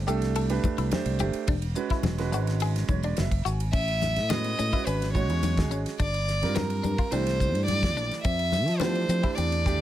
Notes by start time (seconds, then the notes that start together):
0.07 C2 A3 D4 G4 A4, hi-hat pedal
0.22 snare, ride
0.36 A4, ride, muted conga
0.50 A3 D4 G4 B4, ride
0.64 kick, hi-hat pedal, high conga
0.78 C2 E4, ride
0.91 A3 D4 G4 C5, snare, ride, high conga
1.05 C2, ride
1.19 G1 A3 D4 G4 C5, hi-hat pedal, muted conga
1.33 ride
1.48 E1 D4, kick, ride, muted conga
1.62 ride
1.75 G#3 C#4 F#4 B4, hi-hat pedal, muted conga
1.90 E4, muted fingered electric bass stroke, kick, snare, ride
2.03 E1, snare, ride, high conga, low conga
2.18 G#3 C#4 F#4 B4, snare, ride
2.32 G#1 F#4, hi-hat pedal
2.47 snare, ride
2.60 G#4, ride, muted conga
2.76 snare, ride
2.88 E1 C#5, kick, hi-hat pedal, high conga
3.03 D4 D5, ride
3.17 F#1 E5, snare, ride, high conga
3.31 kick, ride
3.45 G#1 F#4 G#5, hi-hat pedal, muted conga
3.60 ride
3.73 A1 C#4 E5, kick, crash, muted conga
3.88 ride
4.02 snare, hi-hat pedal, muted conga, high conga
4.16 A2, snare, ride
4.29 G#3 B3 C#4 F#4 B4 D#5, snare, hi-hat pedal, ride, high conga
4.44 ride
4.59 A2 C#4, hi-hat pedal
4.73 G#3 C#4 E4 F#4 B4, muted fingered electric bass stroke, kick, ride
4.86 G#1 C#4 B4, hi-hat pedal, ride, muted conga
5.02 snare, ride
5.13 G#3 C#4 F#4 C#5, kick, hi-hat pedal
5.29 E2 G#3 C#4 F#4 C#5, ride
5.43 hi-hat pedal, ride, high conga
5.57 G#3 C#4 F#4 G#4, kick, snare, ride
5.71 G#1 C#4, hi-hat pedal, muted conga
5.86 snare, ride
5.99 G1 D4 D5, kick, hi-hat pedal, ride, muted conga
6.14 ride
6.28 snare, hi-hat pedal, muted conga
6.42 G2 G3 C4 F4 A#4, snare, ride
6.54 C4 A#4, snare, hi-hat pedal, ride, high conga
6.70 ride
6.83 G2 D4, hi-hat pedal, high conga
6.98 F4, muted fingered electric bass stroke, kick, ride
7.11 C2 E3 A3 D4 G4 C5, hi-hat pedal, ride, muted conga
7.27 snare, ride
7.40 kick, hi-hat pedal
7.54 G2, ride
7.65 D5, hi-hat pedal, ride, high conga
7.83 kick, snare, ride
7.96 A#1 D4, hi-hat pedal, muted conga
8.11 snare, ride
8.22 F2 C4 E5, kick, hi-hat pedal, ride, muted conga
8.39 ride
8.52 snare, hi-hat pedal, muted conga, high conga
8.66 F3, snare, ride
8.78 E3 A3 B3 D4 G4 C5, snare, hi-hat pedal, ride, high conga
8.95 ride
9.09 F3 C4, hi-hat pedal
9.22 E3 A3 D4 E4 G4, muted fingered electric bass stroke, kick, ride
9.35 E2 C4 D5, hi-hat pedal, ride, muted conga
9.52 ride
9.65 E3 A3 D4 G4, kick, hi-hat pedal